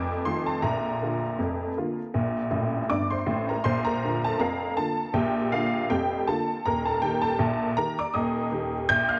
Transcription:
0.00 0.20 F1 medium
0.00 0.20 F2 medium
0.00 0.25 D6 medium
0.25 0.46 D#3 soft
0.25 0.46 A3 medium
0.25 0.46 F4 medium
0.25 0.45 C6 medium
0.46 0.63 A5 medium
0.62 0.94 A#1 medium
0.62 0.95 A#2 medium
0.62 3.27 A#5 medium
1.02 1.22 D3 soft
1.02 1.22 A#3 soft
1.02 1.23 F4 soft
1.39 1.70 F1 medium
1.39 1.71 F2 medium
1.77 1.97 D3 soft
1.77 1.98 A#3 soft
1.77 1.98 F4 medium
2.14 2.46 A#1 medium
2.14 2.46 A#2 medium
2.51 2.80 A1 medium
2.51 2.79 A2 medium
2.89 3.18 G1 medium
2.89 3.18 G2 medium
2.89 3.09 D5 medium
2.89 3.10 D6 medium
3.10 3.46 C5 medium
3.10 3.48 C6 medium
3.26 3.55 A1 medium
3.26 3.55 A2 medium
3.49 3.65 A#4 soft
3.49 3.65 A#5 medium
3.64 3.96 A#1 medium
3.64 3.96 A#2 medium
3.64 3.84 C5 medium
3.64 3.85 C6 medium
3.85 4.21 A#4 medium
3.85 4.22 A#5 medium
4.04 4.24 D3 soft
4.04 4.24 A#3 soft
4.04 4.25 F4 soft
4.24 4.40 A4 medium
4.24 4.40 A5 medium
4.39 4.72 F1 medium
4.39 4.71 F2 medium
4.39 4.75 A#4 medium
4.39 4.75 F5 medium
4.39 4.77 A#5 medium
4.77 4.98 D3 medium
4.77 4.98 A#3 soft
4.77 4.98 F4 soft
4.77 5.12 A4 medium
4.77 5.14 A5 medium
5.13 5.46 A#1 medium
5.13 5.46 A#2 medium
5.13 5.49 G4 medium
5.13 5.52 G5 medium
5.52 5.73 D3 soft
5.52 5.73 A#3 soft
5.52 5.88 F4 medium
5.52 5.90 F5 medium
5.90 6.22 F1 medium
5.90 6.22 F2 medium
5.90 6.25 G4 medium
5.90 6.27 G5 medium
6.27 6.48 D3 medium
6.27 6.48 A#3 medium
6.27 6.49 F4 medium
6.27 6.63 A4 medium
6.27 6.65 A5 medium
6.65 6.97 D#1 medium
6.65 6.97 D#2 medium
6.65 6.85 A#4 medium
6.65 6.85 A#5 medium
6.85 7.02 A4 medium
6.85 7.02 A5 medium
7.02 7.23 D#3 soft
7.02 7.22 A#3 soft
7.02 7.22 G4 medium
7.02 7.22 G5 loud
7.21 7.73 A4 medium
7.21 7.76 A5 medium
7.38 7.71 A#1 medium
7.38 7.71 A#2 medium
7.77 7.97 D#3 medium
7.77 7.98 A#3 soft
7.77 7.98 G4 medium
7.77 7.96 A#4 medium
7.77 7.97 A#5 loud
7.99 8.14 D5 medium
7.99 8.15 D6 medium
8.14 8.46 D#1 medium
8.14 8.46 D#2 medium
8.14 8.85 D#5 medium
8.14 8.85 A#5 medium
8.14 8.88 D#6 medium
8.51 8.72 D#3 soft
8.51 8.72 A#3 soft
8.51 8.73 G4 medium
8.89 9.20 A#1 medium
8.89 9.20 A#2 medium
8.89 9.08 G5 medium
8.89 9.09 G6 loud
9.09 9.20 F5 medium
9.09 9.20 F6 loud

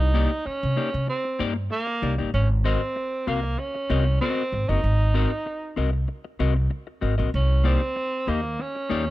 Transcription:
0.00 0.25 C2 loud
0.00 0.47 D#4 loud
0.14 0.30 A#3 medium
0.14 0.30 D#4 medium
0.14 0.30 G4 loud
0.14 0.30 D5 loud
0.45 1.08 C#4 loud
0.45 muted clean electric guitar stroke soft
0.45 muted upright bass stroke soft
0.63 0.76 C3 loud
0.76 0.89 A#3 medium
0.76 0.89 D#4 medium
0.76 0.89 G4 medium
0.76 0.90 D5 medium
0.93 1.07 C3 medium
0.93 muted clean electric guitar stroke medium
1.07 1.42 C4 medium
1.07 muted clean electric guitar stroke medium
1.24 muted clean electric guitar stroke soft
1.39 1.67 G2 medium
1.39 1.55 A#3 medium
1.39 1.55 D#4 medium
1.39 1.55 G4 medium
1.39 1.55 D5 medium
1.56 muted clean electric guitar stroke soft
1.70 2.16 A#3 loud
1.70 muted clean electric guitar stroke soft
1.87 muted clean electric guitar stroke medium
2.02 2.17 C2 loud
2.02 2.14 A#3 medium
2.02 2.14 D#4 medium
2.02 2.14 G4 medium
2.02 2.15 D5 medium
2.18 2.32 G1 medium
2.18 2.30 A#3 medium
2.18 2.30 D#4 medium
2.18 2.29 G4 medium
2.18 2.29 D5 medium
2.34 2.75 G#1 loud
2.34 2.48 C#4 medium
2.64 2.80 C4 medium
2.64 3.29 C4 loud
2.64 2.80 F#4 medium
2.64 2.80 A#4 medium
2.64 2.81 D#5 loud
2.96 muted clean electric guitar stroke soft
3.27 3.54 C2 medium
3.27 3.60 A#3 medium
3.27 3.39 C4 medium
3.27 3.39 F#4 medium
3.27 3.40 A#4 medium
3.27 3.40 F5 medium
3.44 muted clean electric guitar stroke soft
3.58 4.20 C#4 loud
3.58 muted clean electric guitar stroke soft
3.75 muted clean electric guitar stroke soft
3.90 4.17 C2 loud
3.90 4.05 C4 medium
3.90 4.05 F#4 medium
3.90 4.05 A#4 loud
3.90 4.05 D#5 loud
4.07 muted clean electric guitar stroke soft
4.21 4.70 C4 loud
4.21 4.42 C4 medium
4.21 4.42 F#4 medium
4.21 4.42 A#4 medium
4.21 4.42 D#5 medium
4.52 4.67 G#1 medium
4.52 muted clean electric guitar stroke soft
4.68 4.82 F#1 medium
4.68 4.80 C4 soft
4.68 5.94 D#4 loud
4.68 4.80 F#4 medium
4.68 4.80 A#4 medium
4.68 4.80 D#5 medium
4.84 5.25 G#1 loud
5.14 5.30 C4 medium
5.14 5.30 F#4 loud
5.14 5.30 A#4 medium
5.14 5.30 D#5 loud
5.46 muted clean electric guitar stroke soft
5.76 6.04 C2 medium
5.76 5.89 C4 medium
5.76 5.89 F#4 medium
5.76 5.89 A#4 medium
5.76 5.90 D#5 medium
6.08 muted clean electric guitar stroke soft
6.25 muted clean electric guitar stroke medium
6.39 6.67 C2 loud
6.39 6.55 C4 medium
6.39 6.55 F#4 medium
6.39 6.55 A#4 medium
6.39 6.55 D#5 medium
6.56 muted clean electric guitar stroke medium
6.70 muted clean electric guitar stroke soft
6.87 muted clean electric guitar stroke soft
7.01 7.17 G#1 medium
7.01 7.14 C4 medium
7.01 7.14 F#4 medium
7.01 7.14 A#4 medium
7.01 7.14 D#5 medium
7.18 7.32 A#1 medium
7.18 7.30 C4 medium
7.18 7.30 F#4 medium
7.18 7.29 A#4 medium
7.18 7.29 D#5 medium
7.34 7.75 C2 loud
7.34 7.68 C#4 loud
7.64 7.80 A#3 medium
7.64 8.30 C4 loud
7.64 7.80 D#4 medium
7.64 7.80 G4 medium
7.64 7.81 D5 medium
7.96 muted clean electric guitar stroke soft
8.27 8.55 D#2 medium
8.27 8.39 A#3 medium
8.27 8.62 A#3 medium
8.27 8.40 D#4 medium
8.27 8.40 G4 medium
8.27 8.40 D#5 medium
8.44 muted clean electric guitar stroke soft
8.59 9.10 C#4 loud
8.59 muted clean electric guitar stroke medium
8.76 muted clean electric guitar stroke soft
8.89 9.10 D#2 medium
8.89 9.05 A#3 medium
8.89 9.06 D#4 loud
8.89 9.06 G4 medium
8.89 9.06 D5 loud
9.07 muted clean electric guitar stroke soft

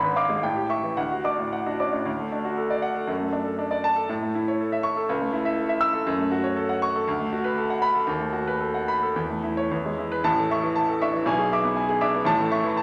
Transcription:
0.00 0.41 G#1 medium
0.00 0.42 G#2 medium
0.00 0.25 B4 medium
0.00 0.12 B5 medium
0.16 0.28 F5 medium
0.16 0.29 D6 medium
0.29 0.43 G#3 medium
0.43 0.95 A2 medium
0.43 0.64 G5 medium
0.56 0.78 G4 medium
0.69 0.82 E5 medium
0.69 0.82 C#6 medium
0.84 0.97 E3 medium
0.97 2.04 D2 medium
0.97 1.19 F#5 medium
1.12 1.34 F#4 soft
1.24 1.47 D4 soft
1.24 1.37 D5 soft
1.24 1.37 D6 medium
1.38 1.61 A2 medium
1.53 1.75 F#5 medium
1.66 1.89 D4 medium
1.66 1.88 F#4 medium
1.80 1.94 C#4 soft
1.80 1.92 D5 soft
1.80 1.92 D6 medium
1.93 2.06 A2 medium
1.93 2.07 D4 soft
2.05 3.05 D2 medium
2.20 2.41 A3 soft
2.32 2.53 D4 medium
2.45 2.66 F#4 medium
2.58 2.79 A4 medium
2.70 2.91 D5 medium
2.82 3.04 F#5 medium
2.95 3.08 A4 medium
3.07 4.06 F#2 medium
3.20 3.41 A3 medium
3.33 3.54 D4 medium
3.45 3.66 A4 medium
3.59 3.79 D4 medium
3.71 3.92 D5 medium
3.84 4.04 A5 medium
3.96 4.09 A4 medium
4.09 5.06 A2 medium
4.23 4.42 A3 medium
4.35 4.55 E4 medium
4.48 4.68 C#5 medium
4.60 4.80 A4 medium
4.72 4.92 E5 medium
4.83 5.04 C#6 medium
4.97 5.09 A4 medium
5.09 6.05 C#2 medium
5.21 5.41 A3 medium
5.33 5.53 E4 medium
5.45 5.65 E5 medium
5.57 5.77 A4 medium
5.69 5.90 E5 medium
5.81 6.01 E6 loud
5.94 6.07 A4 medium
6.07 7.04 F#2 medium
6.18 6.39 A3 medium
6.32 6.52 F#4 medium
6.44 6.64 C#5 medium
6.57 6.77 A4 medium
6.69 6.89 F#5 medium
6.82 7.02 C#6 loud
6.95 7.07 A4 medium
7.07 8.05 D2 medium
7.20 7.40 A3 medium
7.33 7.52 F#4 medium
7.44 7.64 B4 medium
7.57 7.77 A4 medium
7.70 7.90 F#5 medium
7.82 8.02 B5 medium
7.95 8.08 A4 medium
8.07 9.12 D#2 medium
8.20 8.41 A3 medium
8.33 8.55 F#4 medium
8.48 8.69 B4 medium
8.60 8.82 A4 medium
8.74 8.96 F#5 medium
8.88 9.10 B5 medium
9.03 9.16 A4 medium
9.16 9.69 E2 medium
9.30 9.52 A3 medium
9.43 9.65 E4 medium
9.57 9.71 C#5 medium
9.71 10.23 E2 medium
9.86 10.06 G#3 medium
9.99 10.19 E4 medium
10.12 10.24 B4 medium
10.24 11.23 A1 medium
10.24 11.23 A2 medium
10.24 10.45 A5 medium
10.38 10.58 A4 medium
10.51 10.62 E5 medium
10.51 10.62 C#6 medium
10.64 10.84 E3 medium
10.76 10.96 A5 medium
10.88 11.09 A4 medium
11.01 11.14 D4 medium
11.01 11.12 E5 medium
11.01 11.13 C#6 medium
11.14 11.26 E3 medium
11.26 12.24 B1 medium
11.26 12.25 B2 medium
11.26 11.47 G#5 medium
11.39 11.59 G#4 medium
11.52 11.63 E5 medium
11.52 11.64 D6 medium
11.64 11.85 B3 medium
11.76 11.97 G#5 medium
11.89 12.09 G#4 medium
12.01 12.14 D4 medium
12.01 12.13 E5 medium
12.01 12.13 D6 medium
12.14 12.27 B3 medium
12.25 12.83 A1 medium
12.25 12.83 A2 loud
12.25 12.47 A5 medium
12.40 12.60 A4 medium
12.51 12.63 E5 medium
12.51 12.63 C#6 loud
12.64 12.83 E3 medium
12.77 12.83 A5 medium

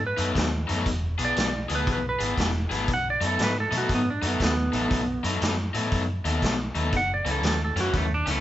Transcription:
0.00 0.13 G#2 medium
0.07 0.31 B4 medium
0.17 0.33 F#2 medium
0.17 0.46 B2 medium
0.17 0.46 F#3 medium
0.17 0.45 A3 medium
0.17 0.45 D#4 loud
0.17 closed hi-hat medium
0.35 0.64 D#2 medium
0.35 kick medium
0.35 snare loud
0.35 closed hi-hat medium
0.67 0.84 F#2 medium
0.67 0.86 B2 medium
0.67 0.86 F#3 medium
0.67 0.86 A3 medium
0.67 0.86 D#4 medium
0.67 snare soft
0.67 closed hi-hat medium
0.86 1.14 E1 medium
0.86 kick loud
0.86 closed hi-hat medium
1.18 1.34 B1 medium
1.18 1.47 E3 medium
1.18 1.47 B3 medium
1.18 1.46 D4 medium
1.18 1.46 G#4 medium
1.18 closed hi-hat medium
1.25 1.72 D5 medium
1.36 1.65 B1 medium
1.36 snare loud
1.36 closed hi-hat medium
1.69 1.85 D2 medium
1.69 1.97 E3 medium
1.69 1.97 B3 medium
1.69 1.97 D4 medium
1.69 1.97 G#4 medium
1.69 closed hi-hat medium
1.75 1.89 B4 medium
1.87 2.15 B1 medium
1.87 kick loud
1.87 closed hi-hat medium
1.92 2.06 B4 medium
2.09 2.34 B4 medium
2.19 2.35 G#1 medium
2.19 2.48 E3 medium
2.19 2.48 B3 medium
2.19 2.47 D4 medium
2.19 2.47 G#4 medium
2.19 closed hi-hat medium
2.38 2.66 E1 medium
2.38 kick medium
2.38 snare loud
2.38 closed hi-hat medium
2.70 2.86 G#1 medium
2.70 2.89 E3 medium
2.70 2.88 B3 medium
2.70 2.88 D4 medium
2.70 2.88 G#4 medium
2.70 snare soft
2.70 closed hi-hat medium
2.88 3.16 B1 medium
2.88 kick loud
2.88 closed hi-hat medium
2.94 3.08 F#5 medium
3.10 3.24 D5 medium
3.21 3.36 F#2 medium
3.21 3.49 B2 medium
3.21 3.49 F#3 medium
3.21 3.49 A3 medium
3.21 3.49 D#4 medium
3.21 closed hi-hat medium
3.27 3.41 A4 medium
3.39 3.67 G#2 medium
3.39 snare loud
3.39 closed hi-hat medium
3.44 3.58 B4 medium
3.60 3.75 A4 medium
3.71 3.87 B2 medium
3.71 4.00 B2 medium
3.71 4.00 F#3 medium
3.71 3.99 A3 medium
3.71 3.99 D#4 medium
3.71 closed hi-hat medium
3.78 3.92 F#4 medium
3.89 4.18 G#2 medium
3.89 kick medium
3.89 closed hi-hat medium
3.94 4.09 B3 medium
4.10 4.25 D4 medium
4.22 4.38 F#2 medium
4.22 4.50 B2 medium
4.22 4.50 F#3 medium
4.22 4.50 A3 medium
4.22 4.50 D#4 medium
4.22 closed hi-hat medium
4.27 4.42 B3 medium
4.40 4.68 D#2 medium
4.40 kick medium
4.40 snare loud
4.40 closed hi-hat medium
4.44 5.40 B3 medium
4.72 4.88 A1 medium
4.72 5.01 B2 medium
4.72 5.01 F#3 medium
4.72 5.01 A3 medium
4.72 5.00 D#4 medium
4.72 closed hi-hat medium
4.91 5.19 B1 medium
4.91 kick loud
4.91 closed hi-hat medium
5.23 5.39 F#2 medium
5.23 5.52 B2 medium
5.23 5.52 F#3 medium
5.23 5.51 A3 medium
5.23 5.51 D#4 medium
5.23 closed hi-hat medium
5.42 5.70 F#2 medium
5.42 snare loud
5.42 closed hi-hat medium
5.74 5.90 A2 medium
5.74 6.02 B2 medium
5.74 6.02 F#3 medium
5.74 6.02 A3 medium
5.74 6.01 D#4 medium
5.74 closed hi-hat medium
5.92 6.20 F#2 medium
5.92 kick medium
5.92 closed hi-hat medium
6.25 6.40 D#2 medium
6.25 6.53 B2 medium
6.25 6.53 F#3 medium
6.25 6.53 A3 medium
6.25 6.52 D#4 medium
6.25 closed hi-hat medium
6.42 6.70 B1 medium
6.42 kick medium
6.42 snare loud
6.42 closed hi-hat medium
6.75 6.90 D#2 medium
6.75 6.93 B2 medium
6.75 6.93 F#3 medium
6.75 6.93 A3 medium
6.75 6.93 D#4 medium
6.75 closed hi-hat medium
6.93 7.21 F#1 medium
6.93 7.11 F#5 loud
6.93 kick loud
6.93 closed hi-hat medium
7.14 7.28 D5 medium
7.25 7.41 C#2 medium
7.25 7.54 F#2 medium
7.25 7.54 E3 medium
7.25 7.53 A#3 medium
7.25 7.53 C#4 medium
7.25 closed hi-hat medium
7.31 7.45 A4 medium
7.43 7.71 D#2 medium
7.43 snare loud
7.43 closed hi-hat medium
7.47 7.62 A4 medium
7.65 7.79 A4 medium
7.76 7.91 F#2 medium
7.76 8.04 F#2 medium
7.76 8.04 E3 medium
7.76 8.04 A#3 medium
7.76 8.04 C#4 medium
7.76 closed hi-hat medium
7.80 7.95 F#4 medium
7.94 8.22 D#2 medium
7.94 8.12 A3 medium
7.94 kick loud
7.94 closed hi-hat medium
8.14 8.29 D4 medium
8.26 8.40 C#2 medium
8.26 8.40 F#2 medium
8.26 8.40 E3 medium
8.26 8.40 A#3 medium
8.26 8.40 C#4 loud
8.26 closed hi-hat medium
8.31 8.40 A3 medium

